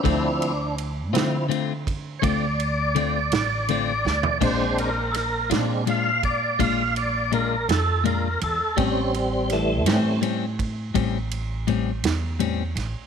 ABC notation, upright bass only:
X:1
M:12/8
L:1/16
Q:3/8=55
K:Dm
V:1 name="Upright bass" clef=bass
D,,6 D,6 D,,6 A,,,4 D,, z | B,,,6 B,,6 B,,,6 F,,4 E,, z | A,,,6 A,,6 A,,,6 E,,4 A,,, z |]